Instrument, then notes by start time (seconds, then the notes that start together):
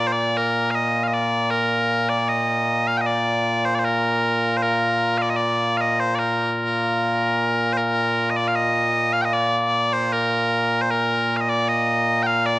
bagpipes
Already playing: A#2 A#3 F4
0.07 C5
0.12 D5
0.37 A#4
0.71 F5
0.75 D#5
1.04 F5
1.08 D#5
1.13 D5
1.51 A#4
2.10 D5
2.29 D#5
2.87 F5
2.97 D#5 G5
3.06 D5
3.65 C5
3.75 D5
3.79 C5
3.85 A#4
4.57 C5
4.63 A#4
5.18 D5 F5
5.29 D#5
5.36 D5
5.77 D#5 F5
6.00 C5
6.15 A#4 D5
7.73 C5
7.77 A#4
8.30 D#5
8.36 D5
8.48 F5
8.56 D#5
9.13 F5
9.22 D#5 G5
9.33 D5
9.93 C5
10.13 A#4
10.82 C5
10.91 A#4
11.37 F5
11.41 D#5
11.49 D5
11.68 D#5
12.23 F5 G5
12.46 D5